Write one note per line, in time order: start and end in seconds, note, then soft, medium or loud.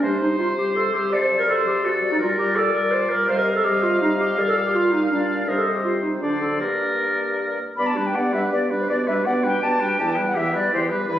0.02 0.35 C3 medium
0.02 0.20 G3 soft
0.02 0.23 D4 medium
0.02 1.14 C5 medium
0.02 0.20 C5 soft
0.21 0.56 G3 soft
0.21 0.38 D#4 medium
0.21 0.56 C5 soft
0.39 0.71 C3 medium
0.39 0.47 F4 medium
0.57 0.93 G3 soft
0.57 0.75 G4 medium
0.57 0.93 C5 soft
0.76 1.08 C3 soft
0.76 0.95 A4 medium
0.94 1.12 G3 soft
0.94 1.12 G4 medium
0.94 1.12 C5 soft
1.12 1.44 C3 medium
1.12 1.47 A4 medium
1.12 1.21 D5 medium
1.22 1.39 C5 medium
1.31 1.66 F#3 soft
1.31 1.66 D5 soft
1.40 1.44 A#4 medium
1.48 1.80 C3 medium
1.48 1.66 A4 medium
1.48 1.86 C5 medium
1.66 2.02 F#3 soft
1.66 1.84 G4 medium
1.66 2.02 D5 soft
1.85 2.16 C3 medium
1.85 2.11 F#4 medium
1.85 2.21 A4 medium
2.02 2.20 F#3 soft
2.02 2.20 D5 medium
2.12 2.16 D#4 medium
2.20 2.52 A#2 medium
2.20 2.38 G3 soft
2.20 2.29 F4 medium
2.20 2.57 A#4 medium
2.20 2.37 D5 medium
2.38 2.73 G3 medium
2.38 2.58 G4 medium
2.38 2.73 D5 medium
2.55 2.88 A#2 medium
2.55 2.75 A4 medium
2.55 3.28 D5 medium
2.73 3.10 G3 soft
2.73 2.93 A#4 medium
2.73 3.09 D5 medium
2.92 3.24 A#2 medium
2.92 3.11 C5 medium
3.10 3.28 G3 soft
3.10 3.30 A#4 medium
3.10 3.27 D5 medium
3.28 4.40 C3 medium
3.28 3.62 G3 medium
3.28 3.37 C5 loud
3.28 3.62 D#5 medium
3.28 5.50 F5 medium
3.37 3.55 A#4 medium
3.55 3.66 A4 medium
3.64 4.01 G3 medium
3.64 3.84 G4 medium
3.64 4.00 D#5 medium
3.83 4.01 F4 medium
4.01 4.37 G3 medium
4.01 4.10 D#4 medium
4.01 4.39 D#5 medium
4.20 4.40 G4 medium
4.38 5.48 A#2 medium
4.38 5.09 G3 medium
4.38 4.48 A#4 medium
4.38 4.81 D5 medium
4.48 4.56 A4 medium
4.66 4.76 G4 medium
4.75 4.94 F4 medium
4.92 5.10 D#4 medium
5.10 5.47 G3 medium
5.10 5.49 D4 medium
5.10 5.50 D5 medium
5.47 6.24 C3 medium
5.47 6.20 G3 medium
5.47 5.59 A#4 medium
5.47 6.22 C5 medium
5.47 5.96 D#5 medium
5.57 5.77 A4 medium
5.75 5.84 G4 medium
5.84 5.93 F4 medium
6.03 6.11 D#4 medium
6.21 6.60 D3 medium
6.21 6.60 F#3 soft
6.21 6.43 D4 medium
6.21 6.62 C5 medium
6.21 6.58 D5 soft
6.41 6.60 A4 medium
6.60 7.57 G2 soft
6.60 7.57 A#3 soft
6.60 7.38 G4 medium
6.60 7.57 A#4 soft
6.60 7.59 D5 soft
7.77 8.11 G2 medium
7.77 7.98 B3 soft
7.77 7.98 G4 soft
7.77 7.98 D5 soft
7.77 7.88 B5 medium
7.87 8.08 A5 medium
7.96 8.16 G3 soft
7.96 8.17 D4 soft
7.96 8.17 B4 soft
8.07 8.16 G5 medium
8.15 8.48 G2 soft
8.15 8.35 B3 soft
8.15 8.35 G4 soft
8.15 8.35 D5 soft
8.15 8.33 F#5 medium
8.33 8.52 G3 soft
8.33 8.52 D4 soft
8.33 8.51 B4 soft
8.33 8.40 E5 medium
8.52 8.85 G2 soft
8.52 8.73 B3 soft
8.52 8.73 G4 soft
8.52 8.72 D5 soft
8.52 8.58 D5 medium
8.70 8.89 G3 soft
8.70 8.89 D4 soft
8.70 8.88 B4 soft
8.80 8.85 C5 medium
8.89 9.22 B2 medium
8.89 9.09 B3 soft
8.89 9.10 G4 soft
8.89 9.09 D5 soft
8.89 8.95 D5 medium
9.07 9.28 G3 soft
9.07 9.28 D4 soft
9.07 9.27 B4 soft
9.07 9.13 E5 medium
9.25 9.58 B2 medium
9.25 9.46 B3 soft
9.25 9.45 G4 soft
9.25 9.45 D5 soft
9.25 9.32 F#5 medium
9.44 9.62 G3 soft
9.44 9.62 D4 soft
9.44 9.61 B4 soft
9.44 9.65 G5 medium
9.62 9.95 B2 soft
9.62 9.82 B3 soft
9.62 9.83 G4 soft
9.62 9.82 D5 soft
9.62 9.83 A5 medium
9.80 9.98 G3 soft
9.80 9.99 D4 soft
9.80 9.97 B4 soft
9.80 10.01 G5 medium
9.98 10.32 E2 medium
9.98 10.19 E3 soft
9.98 10.19 E4 soft
9.98 10.17 G4 soft
9.98 10.11 A5 medium
10.10 10.27 G5 medium
10.16 10.37 G3 soft
10.16 10.37 G4 soft
10.16 10.36 B4 soft
10.28 10.38 F#5 medium
10.34 10.68 E2 soft
10.34 10.56 E3 soft
10.34 10.56 E4 soft
10.34 10.54 G4 soft
10.34 10.58 E5 medium
10.53 10.72 G3 soft
10.53 10.72 G4 soft
10.53 10.72 B4 soft
10.53 10.73 D5 medium
10.72 11.05 E2 medium
10.72 10.92 E3 soft
10.72 10.93 E4 soft
10.72 10.91 G4 soft
10.72 10.80 C5 medium
10.90 11.08 G3 soft
10.90 11.08 G4 medium
10.90 11.07 B4 soft
11.00 11.09 B4 medium
11.08 11.19 G2 medium
11.08 11.19 E3 medium
11.08 11.19 E4 soft
11.08 11.19 B4 soft
11.08 11.16 B4 medium